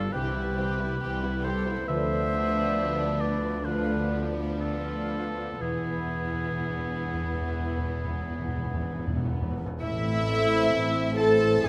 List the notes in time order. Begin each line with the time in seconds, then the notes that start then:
Already playing: G2 D3 G3 B3 D4 F4 G4 A4
0.12 C2 C3 E3 C4 G4 B4
0.17 E3 G4
0.36 G3 B3 C4 E4
0.58 E3 G3 C4 G4
0.79 G3 B3 C4 E4
1.01 C2 E3 B3 C4 G4
1.22 G3 B3 C4 E4
1.42 E3 C4 G4 A4 C5
1.66 G3 B3 E4
1.86 D2 D3 F3 B3 D4 B4 C5 E5
2.10 B3
2.33 D4
2.55 B3
2.77 A3
2.99 B3
3.20 B4 D5
3.43 F4
3.64 D3 F3 B3 D4 F4 B4
3.88 B3
4.11 D4
4.36 B3
4.60 A3 F4 A4
4.85 B3
5.09 B4
5.35 F4
5.59 E1 E2 E3 B3 E4 G#4 B4
5.71 E2
5.79 E2
5.88 E2 E4
5.97 E2
6.06 E2
6.14 E2 B3
6.24 E2
6.33 E2
6.41 E2 E4
6.51 E2
6.60 E2
6.68 E2 D4
6.78 E2
6.87 E2
6.95 E2 E4
7.05 E2
7.14 E2
7.22 E2 B4
7.33 E2
7.41 E2
7.50 E2 E4
7.60 E2
7.69 E2
7.76 E2 E3 B3 B4
7.87 E2
7.96 E2
8.03 E2 E4
8.12 E2
8.21 E2
8.30 E2 B3
8.39 E2
8.47 E2
8.56 E2 E4
8.65 E2
8.74 E2
8.81 E2 D4
8.90 E2
8.99 E2
9.06 E2 E4
9.16 E2
9.25 E2
9.32 E2 B4
9.42 E2
9.50 E2
9.57 E2 E4
9.66 E2
9.80 A1 A2 E3 A3 C4 E4 E5
10.04 C4
10.26 A4 C5
10.72 A1 A2 E5
10.95 C5
11.17 A4 C5 A5
11.42 C4
11.64 E1 E2 B3 D4 G#4 D5 G#5